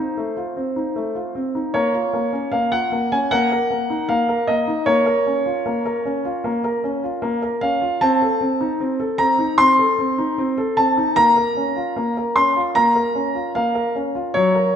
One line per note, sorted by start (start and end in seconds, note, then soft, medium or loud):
0.00 0.19 D#4 medium
0.00 1.36 C5 medium
0.17 0.36 A3 medium
0.37 0.58 F4 medium
0.56 0.77 C4 soft
0.76 0.97 D#4 soft
0.96 1.15 A3 medium
1.15 1.36 F4 medium
1.35 1.56 C4 medium
1.55 1.75 D#4 soft
1.74 1.94 A#3 medium
1.74 2.49 C#5 medium
1.94 2.15 F4 medium
2.13 2.34 A#3 medium
2.33 2.54 C#4 medium
2.52 2.72 A#3 medium
2.52 2.72 F5 medium
2.72 2.94 F4 medium
2.72 3.12 F#5 medium
2.92 3.13 A#3 medium
3.12 3.32 C#4 medium
3.12 3.32 G#5 medium
3.31 3.51 A#3 medium
3.31 4.09 F#5 loud
3.52 3.72 A#4 medium
3.70 3.91 A#3 soft
3.90 4.11 D#4 medium
4.09 4.28 A#3 medium
4.09 4.48 F5 medium
4.29 4.49 A#4 medium
4.47 4.69 A#3 medium
4.47 4.83 D#5 medium
4.68 4.87 D#4 medium
4.86 5.06 A#3 medium
4.86 6.51 C#5 medium
5.06 5.27 A#4 medium
5.26 5.47 C#4 medium
5.46 5.67 F4 medium
5.66 5.85 A#3 medium
5.86 6.06 A#4 medium
6.05 6.26 C#4 medium
6.25 6.46 F4 medium
6.44 6.63 A#3 medium
6.64 6.85 A#4 medium
6.84 7.04 C#4 medium
7.04 7.24 F4 medium
7.22 7.42 A#3 medium
7.42 7.63 A#4 medium
7.61 7.83 C#4 medium
7.61 7.97 F5 medium
7.82 8.01 F4 medium
8.01 8.21 C4 medium
8.01 8.72 A5 loud
8.22 8.42 A4 medium
8.41 8.61 C4 medium
8.61 8.81 D#4 medium
8.80 8.99 C4 medium
9.00 9.20 A4 medium
9.18 9.40 C4 medium
9.18 9.58 A#5 loud
9.39 9.60 D#4 medium
9.58 9.78 C4 medium
9.58 10.77 C6 loud
9.79 9.99 A4 medium
9.99 10.19 C4 medium
10.18 10.39 D#4 medium
10.38 10.57 C4 medium
10.58 10.78 A4 medium
10.77 10.98 C4 medium
10.77 11.13 A5 medium
10.97 11.17 D#4 medium
11.16 11.36 A#3 medium
11.16 12.36 A#5 loud
11.36 11.58 A#4 medium
11.57 11.78 C#4 medium
11.76 11.97 F4 medium
11.96 12.16 A#3 medium
12.17 12.38 A#4 medium
12.36 12.57 C#4 medium
12.36 12.60 C6 medium
12.56 12.77 F4 medium
12.75 12.95 A#3 medium
12.75 13.51 A#5 loud
12.95 13.16 A#4 medium
13.15 13.36 C#4 medium
13.35 13.56 F4 medium
13.55 13.74 A#3 medium
13.55 13.95 F5 medium
13.75 13.96 A#4 medium
13.95 14.16 C#4 medium
14.15 14.35 F4 medium
14.34 14.54 F#3 medium
14.34 14.76 C#5 medium
14.55 14.75 A#4 medium